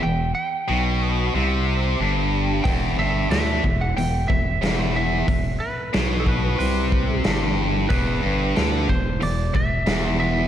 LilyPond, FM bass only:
\new Staff \with { instrumentName = "FM bass" } { \clef bass \time 4/4 \key e \minor \tempo 4 = 91 e,,8 r8 b,,4 c,4 g,,4 | e,,8 g,,8 d,8 e,,8 e,,8 e,,8 e,,4 | e,,8 r8 b,,4 c,4 g,,4 | e,,8 g,,8 d,8 e,,8 e,,8 e,,8 e,,4 | }